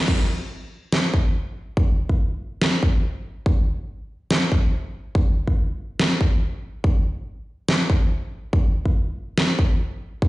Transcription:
0.08 kick, crash
0.92 snare
1.14 kick
1.77 kick
2.09 kick
2.62 snare
2.83 kick
3.46 kick
4.31 snare
4.52 kick
5.15 kick
5.47 kick
6.00 snare
6.21 kick
6.84 kick
7.69 snare
7.90 kick
8.53 kick
8.86 kick
9.38 snare
9.59 kick
10.22 kick

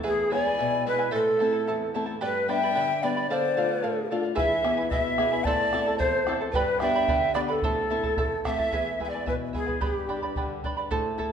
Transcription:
0.03 E2 E4 G#4 B4 E5 G#5
0.08 G#4
0.30 G#3 B3 E4 B4 D5 E5 G#5
0.46 E4 B4 G#5
0.59 B2 E4 B4 E5 G#5
0.86 G#3 B3 E4 B4 E5 G#5
0.99 E4 B4 G#5
1.11 A2 E4 A4 B4 C5 E5 A5
1.19 A4
1.39 A3 C4 E4 A4 E5 A5
1.53 E4 A4 A5
1.67 E2 E4 A4 E5 A5
1.94 A3 C4 E4 A4 E5 A5
2.06 E4 A4 A5
2.21 G2 G4 B4 D5 G5 B5
2.48 G3 B3 D4 B4 D5 E5 G5 B5
2.63 B4 D5 B5
2.75 D3 B4 D5 G5 B5
3.03 G3 B3 D4 B4 D5 G5 B5
3.16 B4 D5 B5
3.30 D3 A4 C5 D5 F5
3.57 A3 D4 F4 A4 D5 F5
3.69 D5 F5
3.83 A2 A4 D5 F5
4.11 A3 D4 F4 A4 D5 F5
4.23 D5 F5
4.35 E3 E4 G#4 B4 E5 G#5, bombo low
4.63 B3 E4 G#4 B4 E5 G#5, bombo rim
4.77 E4 B4 G#5
4.89 B2 E4 B4 D#5 E5 G#5, bombo low
5.00 E5
5.18 B3 E4 G#4 B4 E5 G#5, bombo rim
5.32 E4 B4 G#5
5.44 A2 E4 A4 C5 D5 E5 A5, bombo low
5.73 C4 E4 A4 E5 A5, bombo rim
5.87 E4 A4 A5
5.98 E2 E4 A4 C5 E5 A5, bombo low
6.26 C4 E4 A4 E5 A5, bombo rim
6.41 E4 A4 A5
6.52 G2 G4 B4 C5 G5, bombo low
6.56 B4 D5 B5
6.80 B3 D4 G4 B4 D5 E5 G5 G#5, bombo rim
6.84 B5
6.95 B4 D5 B5
7.08 D3 B4 D5 G5 B5, bombo low
7.34 B3 D4 G4 B4 D5 G5 B5, bombo rim
7.48 A4 B4 D5 B5
7.53 A4
7.62 A2 E4 A4 C5 E5 A5, bombo low
7.90 A3 C4 E4 A4 E5 A5
8.03 E4 A4 A5, bombo low
8.17 E2 E4 A4 E5 A5, bombo low
8.44 A3 C4 E4 A4 E5 F5 A5, bombo rim, bombo low
8.49 E5
8.58 E4 A4 A5, bombo low
8.72 E2 E4 G#4 B4 E5 G#5, bombo low
8.99 G#3 E4 B4 E5 G#5, bombo low
9.04 E5 G#5
9.09 D5
9.14 E4 B4 G#5
9.26 B2 E4 B4 E5 G#5, bombo low
9.53 G#3 E4 G#4 B4 E5 G#5, bombo low
9.67 E4 B4 G#5, bombo low
9.81 G2 G4 B4 D5 G5 B5, bombo low
10.09 D4 B4 D5 G5 B5, bombo low
10.22 B4 D5 B5
10.36 D3 B4 D5 G5 B5, bombo low
10.64 D4 B4 D5 G5 B5, bombo low
10.77 B4 D5 B5
10.91 A2 E4 A4 C5 E5 A5, bombo low
11.18 E4 A4 E5 A5, bombo low

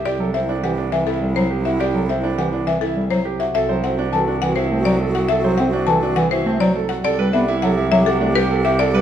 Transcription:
0.05 C2 E4 G4 D5
0.19 F#3 A4
0.34 C4 E4 E5
0.49 D4
0.63 E3 E4 G4 F#5
0.78 D4
0.92 E3 E5
0.97 E4
1.07 E4 A4
1.21 G3
1.27 E4
1.36 F#3 C5
1.51 G4
1.58 E4
1.65 F#4 E5
1.80 G4 D5
1.89 E4
1.94 F#3 A4
2.09 C4 E5
2.19 E4
2.23 D4
2.38 E3 G4 F#5
2.49 D4 E4
2.66 E3 E5
2.80 E4 A4
2.96 G3
3.10 F#3 E4 C5
3.25 G4
3.40 F#4 E5
3.54 C2 F#4 A4 E5
3.69 F#3 C5
3.83 C4 F#4 F#5
3.98 D4
4.12 E3 F#4 A4 A5
4.28 D4
4.42 E3 F#5
4.46 F#4
4.56 E4 C5
4.71 A3 C4
4.77 F#4
4.85 F#3 D5
5.01 A4
5.07 F#4
5.15 F#4 F#5
5.29 A4 E5
5.38 F#4
5.44 F#3 C5
5.58 C4 F#5
5.68 F#4
5.73 D4
5.87 E3 A4 A5
5.98 F#4
6.03 D4
6.16 E3 F#5
6.29 E4 F#4 C5
6.46 A3 C4
6.59 F#3 F#4 D5
6.75 A4
6.89 F#4 F#5
7.04 C2 G4 A4 D5
7.19 G3 B4
7.33 B3 D4 G4 E5
7.48 E4
7.62 F#3 G4 A4 F#5
7.78 E4
7.92 F#3 E5
7.96 G4
8.06 F#4 A4
8.20 A3 D4
8.27 G4
8.35 G3 G4 B4
8.50 A4
8.58 G4
8.65 G4 E5
8.79 A4 D5
8.88 G4
8.94 G3 B4

